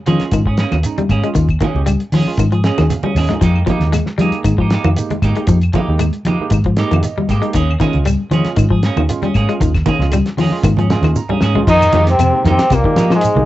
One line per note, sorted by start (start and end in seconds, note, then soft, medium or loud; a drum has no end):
0.06 0.18 D#3 medium
0.06 0.22 F3 medium
0.06 0.40 G#3 medium
0.06 0.23 A#3 medium
0.06 0.23 C#4 medium
0.06 0.41 C#4 medium
0.06 0.41 F4 medium
0.06 0.23 G#4 medium
0.06 closed hi-hat soft
0.06 high conga medium
0.06 shekere soft
0.20 muted fingered electric bass stroke soft
0.20 snare soft
0.20 closed hi-hat soft
0.31 0.63 G#2 medium
0.31 0.41 D#3 medium
0.31 kick medium
0.31 closed hi-hat medium
0.31 claves medium
0.31 shekere medium
0.45 0.58 C#4 soft
0.45 0.58 G#4 soft
0.45 muted clean electric guitar stroke medium
0.45 kick medium
0.57 0.75 A#3 medium
0.57 0.75 C#4 medium
0.57 0.75 G#4 medium
0.57 snare medium
0.57 closed hi-hat soft
0.57 shekere soft
0.71 0.82 D#2 medium
0.71 snare soft
0.71 high conga medium
0.71 claves medium
0.83 1.02 G#3 medium
0.83 1.02 C#4 medium
0.83 1.02 D#4 medium
0.83 closed hi-hat medium
0.83 shekere medium
0.98 1.13 G3 medium
0.98 muted fingered electric bass stroke soft
0.98 closed hi-hat soft
0.98 high conga medium
1.09 1.20 G#2 medium
1.09 1.26 A#3 medium
1.09 1.27 C#4 medium
1.09 1.27 G#4 medium
1.09 kick medium
1.09 closed hi-hat soft
1.09 high conga medium
1.09 claves medium
1.09 shekere soft
1.23 1.31 G#3 medium
1.23 1.46 G#3 medium
1.23 1.46 C#4 medium
1.23 1.47 F4 medium
1.23 closed hi-hat soft
1.35 1.55 D#2 medium
1.35 1.50 D#3 medium
1.35 kick medium
1.35 closed hi-hat medium
1.35 shekere medium
1.49 kick medium
1.49 closed hi-hat soft
1.49 claves medium
1.60 1.76 D#3 medium
1.60 1.78 A#3 medium
1.60 1.79 C#4 medium
1.60 1.79 G#4 medium
1.60 kick medium
1.60 closed hi-hat soft
1.60 high conga medium
1.60 shekere soft
1.74 1.95 C#2 medium
1.74 1.92 G#3 medium
1.74 1.91 C#4 medium
1.74 1.92 G4 medium
1.74 high conga medium
1.86 2.01 G3 medium
1.86 closed hi-hat medium
1.86 claves medium
1.86 shekere medium
2.00 closed hi-hat soft
2.12 2.23 D#3 medium
2.12 2.28 F3 medium
2.12 2.30 A#3 medium
2.12 2.19 C#4 medium
2.12 2.30 C#4 medium
2.12 2.19 F4 medium
2.12 2.30 G#4 medium
2.12 open hi-hat medium
2.12 high conga medium
2.12 shekere soft
2.26 2.43 G#3 medium
2.26 2.43 C#4 medium
2.26 2.43 F4 medium
2.26 muted fingered electric bass stroke soft
2.37 2.69 G#2 medium
2.37 2.47 D#3 medium
2.37 kick medium
2.37 closed hi-hat medium
2.37 claves medium
2.37 shekere medium
2.52 2.67 F3 medium
2.52 2.65 G#4 soft
2.52 closed hi-hat soft
2.64 2.92 G#3 medium
2.64 2.81 A#3 medium
2.64 2.92 C#4 medium
2.64 2.81 C#4 medium
2.64 2.93 G#4 medium
2.64 2.81 G#4 medium
2.64 2.89 G#5 medium
2.64 snare medium
2.64 closed hi-hat soft
2.64 shekere soft
2.78 2.88 D#2 medium
2.78 2.93 D#3 medium
2.78 snare soft
2.78 closed hi-hat soft
2.78 high conga medium
2.78 claves medium
2.90 3.15 F5 medium
2.90 closed hi-hat medium
2.90 high conga medium
2.90 shekere medium
3.03 3.19 G3 medium
3.03 3.16 C#4 soft
3.03 3.16 G#4 soft
3.03 muted fingered electric bass stroke soft
3.03 high conga medium
3.15 3.26 D#2 medium
3.15 3.33 A#3 medium
3.15 3.33 C#4 medium
3.15 3.33 G#4 medium
3.15 3.41 D#5 medium
3.15 snare soft
3.15 open hi-hat medium
3.15 low conga medium
3.15 claves medium
3.15 shekere soft
3.29 3.36 G#3 medium
3.29 3.43 G#3 medium
3.29 3.43 C#4 medium
3.29 3.43 D#4 medium
3.29 snare soft
3.29 closed hi-hat soft
3.29 low conga medium
3.41 3.62 F2 medium
3.41 3.56 F3 medium
3.41 3.58 G#3 medium
3.41 3.59 A#3 medium
3.41 3.59 D#4 medium
3.41 3.59 G4 medium
3.41 kick medium
3.41 closed hi-hat medium
3.41 shekere medium
3.56 claves medium
3.66 3.82 F3 medium
3.66 3.91 G#3 medium
3.66 3.85 G#3 medium
3.66 3.91 A#3 medium
3.66 3.85 A#3 medium
3.66 3.91 D#4 medium
3.66 3.85 D#4 medium
3.66 3.85 G4 medium
3.66 3.92 G4 medium
3.66 kick medium
3.66 closed hi-hat soft
3.66 high conga medium
3.66 shekere soft
3.80 4.01 D#2 medium
3.80 snare soft
3.80 closed hi-hat soft
3.80 high conga medium
3.92 4.08 G#3 medium
3.92 snare soft
3.92 closed hi-hat medium
3.92 high conga medium
3.92 claves medium
3.92 shekere medium
4.06 snare soft
4.18 4.30 F3 medium
4.18 4.33 G3 medium
4.18 4.36 G#3 medium
4.18 4.54 G#3 medium
4.18 4.36 A#3 medium
4.18 4.54 A#3 medium
4.18 4.36 D#4 medium
4.18 4.37 G4 medium
4.18 closed hi-hat soft
4.18 high conga medium
4.18 shekere soft
4.22 4.55 D#4 medium
4.22 4.55 G#4 medium
4.31 muted fingered electric bass stroke soft
4.31 closed hi-hat soft
4.44 4.76 G#2 medium
4.44 4.53 D#3 medium
4.44 kick medium
4.44 closed hi-hat medium
4.44 claves medium
4.44 shekere medium
4.58 4.73 F3 medium
4.58 4.72 A#3 soft
4.58 4.72 D#4 soft
4.58 4.72 G4 soft
4.58 kick medium
4.70 4.88 G#3 medium
4.70 4.88 A#3 medium
4.70 4.89 D#4 medium
4.70 4.89 G4 medium
4.70 snare medium
4.70 closed hi-hat medium
4.70 shekere soft
4.84 4.94 F2 medium
4.84 4.99 D#3 medium
4.84 high conga medium
4.84 claves medium
4.96 5.14 G#3 medium
4.96 5.15 A#3 medium
4.96 5.15 D#4 medium
4.96 5.15 G4 medium
4.96 closed hi-hat medium
4.96 shekere medium
5.10 5.26 G#3 medium
5.10 muted fingered electric bass stroke soft
5.10 closed hi-hat soft
5.10 high conga medium
5.22 5.33 G#2 medium
5.22 5.40 G#3 medium
5.22 5.40 A#3 medium
5.22 5.40 D#4 medium
5.22 5.40 G4 medium
5.22 kick medium
5.22 closed hi-hat medium
5.22 high conga medium
5.22 claves medium
5.22 shekere soft
5.35 5.58 G#3 medium
5.35 5.44 G#3 medium
5.35 5.59 A#3 medium
5.35 5.59 D#4 medium
5.35 5.58 G4 medium
5.35 closed hi-hat soft
5.47 5.68 F2 medium
5.47 5.64 F3 medium
5.47 kick medium
5.47 closed hi-hat medium
5.47 shekere medium
5.61 closed hi-hat soft
5.61 claves medium
5.73 5.89 F3 medium
5.73 5.91 G#3 medium
5.73 5.91 A#3 medium
5.73 5.92 D#4 medium
5.73 5.92 G4 medium
5.73 kick medium
5.73 closed hi-hat medium
5.73 high conga medium
5.73 shekere soft
5.88 6.09 D#2 medium
5.88 6.05 G#3 medium
5.88 6.05 A#3 medium
5.88 6.05 D#4 medium
5.88 6.05 G4 medium
5.99 6.14 G#3 medium
5.99 closed hi-hat medium
5.99 claves medium
5.99 shekere medium
6.13 closed hi-hat soft
6.25 6.36 F3 medium
6.25 6.43 G#3 medium
6.25 6.43 A#3 medium
6.25 6.32 D#4 medium
6.25 6.43 D#4 medium
6.25 6.32 G4 medium
6.25 6.43 G4 medium
6.25 muted clean electric guitar stroke medium
6.25 closed hi-hat medium
6.25 high conga medium
6.25 shekere soft
6.40 6.57 G#3 medium
6.40 6.57 A#3 medium
6.40 6.57 D#4 medium
6.40 6.57 G4 medium
6.40 muted fingered electric bass stroke soft
6.50 6.82 G#2 medium
6.50 6.60 D#3 medium
6.50 kick medium
6.50 closed hi-hat medium
6.50 claves medium
6.50 shekere medium
6.64 6.81 F3 medium
6.64 kick medium
6.64 closed hi-hat soft
6.77 6.94 G#3 medium
6.77 7.06 G#3 medium
6.77 7.06 A#3 medium
6.77 6.94 A#3 medium
6.77 7.06 D#4 medium
6.77 6.95 D#4 medium
6.77 7.06 G4 medium
6.77 6.95 G4 medium
6.77 snare medium
6.77 closed hi-hat soft
6.77 shekere soft
6.91 7.01 F2 medium
6.91 7.06 D#3 medium
6.91 closed hi-hat soft
6.91 high conga medium
6.91 claves medium
7.03 7.28 D#5 medium
7.03 closed hi-hat medium
7.03 shekere medium
7.17 7.32 G3 medium
7.17 muted fingered electric bass stroke soft
7.17 high conga medium
7.29 7.40 G#2 medium
7.29 7.46 G#3 medium
7.29 7.46 A#3 medium
7.29 7.46 G4 medium
7.29 7.54 G5 medium
7.29 muted clean electric guitar stroke medium
7.29 kick medium
7.29 closed hi-hat soft
7.29 claves medium
7.29 shekere soft
7.42 7.49 G#3 medium
7.42 7.55 G#3 medium
7.42 7.55 A#3 medium
7.42 7.55 D#4 medium
7.42 7.55 G4 loud
7.42 closed hi-hat soft
7.53 7.75 D#2 medium
7.53 7.70 D#3 medium
7.53 7.71 A#3 medium
7.53 7.72 C#4 medium
7.53 7.72 G#4 medium
7.53 kick medium
7.53 closed hi-hat medium
7.53 shekere medium
7.71 claves medium
7.80 7.95 D#3 medium
7.80 8.03 G#3 medium
7.80 7.97 A#3 medium
7.80 8.03 C#4 medium
7.80 7.98 C#4 medium
7.80 8.03 F4 medium
7.80 7.98 G#4 medium
7.80 kick medium
7.80 snare soft
7.80 closed hi-hat soft
7.80 high conga medium
7.80 shekere soft
7.93 8.15 C#2 medium
7.93 closed hi-hat soft
7.93 high conga medium
8.05 8.21 G3 medium
8.05 closed hi-hat medium
8.05 claves medium
8.05 shekere medium
8.31 8.42 D#3 medium
8.31 8.47 F3 medium
8.31 8.66 G#3 medium
8.31 8.49 A#3 medium
8.31 8.66 C#4 medium
8.31 8.49 C#4 medium
8.31 8.66 F4 medium
8.31 8.49 G#4 medium
8.31 closed hi-hat soft
8.31 high conga medium
8.31 shekere soft
8.45 muted fingered electric bass stroke soft
8.45 snare soft
8.45 closed hi-hat soft
8.56 8.89 G#2 medium
8.56 8.65 D#3 medium
8.56 kick medium
8.56 closed hi-hat medium
8.56 claves medium
8.56 shekere medium
8.71 8.86 F3 medium
8.71 8.84 G#4 soft
8.71 kick medium
8.83 9.01 A#3 medium
8.83 9.01 C#4 medium
8.83 9.01 G#4 medium
8.83 snare medium
8.83 closed hi-hat soft
8.83 shekere soft
8.96 9.07 D#2 medium
8.96 9.12 D#3 medium
8.96 high conga medium
8.96 claves medium
9.09 9.27 G#3 medium
9.09 9.27 C#4 medium
9.09 9.27 F4 medium
9.09 closed hi-hat medium
9.09 shekere medium
9.22 9.38 G3 medium
9.22 9.35 C#4 soft
9.22 9.35 G#4 soft
9.22 muted fingered electric bass stroke soft
9.22 closed hi-hat soft
9.22 high conga medium
9.34 9.46 G#2 medium
9.34 9.52 A#3 medium
9.34 9.52 C#4 medium
9.34 9.53 G#4 medium
9.34 kick medium
9.34 closed hi-hat soft
9.34 claves medium
9.34 shekere soft
9.48 9.71 G#3 medium
9.48 9.56 G#3 medium
9.48 9.71 C#4 medium
9.48 9.71 F4 medium
9.48 closed hi-hat soft
9.60 9.81 D#2 medium
9.60 9.76 D#3 medium
9.60 kick medium
9.60 closed hi-hat medium
9.60 shekere medium
9.74 kick medium
9.74 snare soft
9.74 closed hi-hat soft
9.74 claves medium
9.86 10.02 D#3 medium
9.86 10.04 A#3 medium
9.86 10.04 C#4 medium
9.86 10.04 G#4 medium
9.86 kick medium
9.86 closed hi-hat medium
9.86 high conga loud
9.86 shekere soft
9.99 10.20 C#2 medium
9.99 10.17 G#3 medium
9.99 10.17 C#4 medium
9.99 10.17 F4 medium
9.99 snare soft
9.99 high conga medium
10.11 10.28 G3 medium
10.11 closed hi-hat medium
10.11 high conga medium
10.11 claves medium
10.11 shekere medium
10.26 snare soft
10.26 closed hi-hat soft
10.37 10.49 D#3 medium
10.37 10.54 F3 medium
10.37 10.56 A#3 medium
10.37 10.45 C#4 medium
10.37 10.56 C#4 medium
10.37 10.45 G#4 medium
10.37 10.56 G#4 medium
10.37 open hi-hat medium
10.37 high conga medium
10.37 shekere soft
10.50 10.69 G#3 medium
10.50 10.69 C#4 medium
10.50 10.69 F4 loud
10.50 muted fingered electric bass stroke soft
10.63 10.95 G#2 medium
10.63 10.72 D#3 medium
10.63 kick medium
10.63 closed hi-hat medium
10.63 high conga medium
10.63 claves medium
10.63 shekere medium
10.77 10.94 F3 medium
10.77 10.90 C#4 soft
10.77 10.90 G#4 soft
10.77 closed hi-hat soft
10.77 high conga medium
10.90 11.19 G#3 medium
10.90 11.07 A#3 medium
10.90 11.19 C#4 medium
10.90 11.19 F4 loud
10.90 11.08 G#4 medium
10.90 muted clean electric guitar stroke medium
10.90 snare medium
10.90 closed hi-hat soft
10.90 high conga medium
10.90 shekere soft
11.02 11.12 D#2 medium
11.02 11.19 D#3 medium
11.02 snare soft
11.02 closed hi-hat soft
11.02 high conga loud
11.02 claves medium
11.16 11.65 A#5 medium
11.16 high tom soft
11.16 shekere medium
11.29 11.45 G3 medium
11.29 11.42 C#4 soft
11.29 11.43 G#4 medium
11.29 muted fingered electric bass stroke soft
11.29 low conga medium
11.41 11.53 G#2 medium
11.41 11.59 A#3 medium
11.41 11.59 C#4 medium
11.41 11.60 G#4 medium
11.41 snare medium
11.41 claves medium
11.41 shekere soft
11.55 11.63 G#3 medium
11.55 11.69 G#3 medium
11.55 11.69 C#4 medium
11.55 11.69 F4 medium
11.55 floor tom medium
11.55 low conga medium
11.67 11.88 F2 loud
11.67 12.05 D#3 medium
11.67 11.83 F3 medium
11.67 11.85 G#3 medium
11.67 11.85 A#3 medium
11.67 12.06 D#4 loud
11.67 11.85 D#4 medium
11.67 muted clean electric guitar stroke medium
11.67 kick loud
11.67 crash medium
11.67 shekere medium
11.82 claves medium
11.82 shekere medium
11.93 12.14 F2 medium
11.93 12.09 D#3 medium
11.93 12.11 G#3 medium
11.93 12.11 A#3 medium
11.93 12.12 D#4 medium
11.93 12.11 D#4 medium
11.93 12.12 G4 medium
11.93 12.11 G4 medium
11.93 snare soft
11.93 closed hi-hat soft
11.93 high conga loud
12.07 12.44 C3 medium
12.07 12.45 C4 loud
12.07 snare soft
12.07 closed hi-hat medium
12.07 shekere soft
12.18 12.30 F2 medium
12.18 12.35 C3 medium
12.18 closed hi-hat medium
12.18 claves medium
12.18 shekere medium
12.33 12.56 G#3 medium
12.33 12.55 A#3 medium
12.33 12.56 D#4 medium
12.33 12.55 G4 medium
12.45 12.56 F2 medium
12.45 12.70 C3 medium
12.45 12.61 D#3 medium
12.45 12.60 G#3 medium
12.45 12.60 A#3 medium
12.45 12.59 D#4 medium
12.45 12.59 G4 medium
12.45 snare soft
12.45 closed hi-hat medium
12.45 high conga medium
12.45 low conga medium
12.45 shekere soft
12.50 12.76 C4 loud
12.59 12.75 A#3 soft
12.59 12.75 D#4 soft
12.59 12.75 G4 soft
12.59 snare medium
12.59 closed hi-hat medium
12.59 shekere medium
12.70 12.82 C2 medium
12.70 13.12 A#2 medium
12.70 12.80 C3 medium
12.70 kick medium
12.70 snare soft
12.70 closed hi-hat medium
12.70 high conga medium
12.70 claves medium
12.70 shekere medium
12.75 13.13 A#3 medium
12.84 13.00 D#3 medium
12.84 13.07 G#3 medium
12.84 13.07 A#3 medium
12.84 13.07 D#4 medium
12.84 13.08 G4 loud
12.84 kick medium
12.96 13.17 F3 medium
12.96 13.14 G#3 medium
12.96 13.14 A#3 medium
12.96 13.14 D#4 medium
12.96 13.14 G4 medium
12.96 snare medium
12.96 closed hi-hat medium
12.96 shekere medium
13.10 13.45 G#2 medium
13.10 13.26 F3 medium
13.10 snare medium
13.10 claves medium
13.10 shekere soft
13.16 13.45 G#3 medium
13.21 closed hi-hat medium
13.21 shekere medium
13.35 13.45 C2 medium
13.35 13.45 D#3 medium
13.35 13.45 G#3 medium
13.35 13.45 A#3 medium
13.35 13.45 D#4 medium
13.35 13.45 G4 medium
13.35 high conga medium